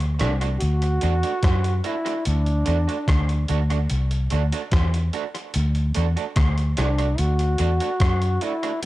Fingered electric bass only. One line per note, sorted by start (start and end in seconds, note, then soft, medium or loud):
0.00 0.22 D2 medium
0.21 0.57 C2 medium
0.62 0.98 D2 loud
1.03 1.21 E2 loud
1.44 1.80 F#2 medium
2.27 2.63 D2 loud
2.68 2.86 E2 medium
3.08 3.45 D2 medium
3.50 3.86 D2 loud
3.91 4.27 C2 medium
4.32 4.50 D2 medium
4.72 5.09 E2 medium
5.56 5.92 D2 loud
5.97 6.15 E2 medium
6.37 6.73 D2 medium
6.78 7.14 C2 loud
7.19 7.55 D2 loud
7.60 7.78 E2 medium
8.01 8.37 F#2 loud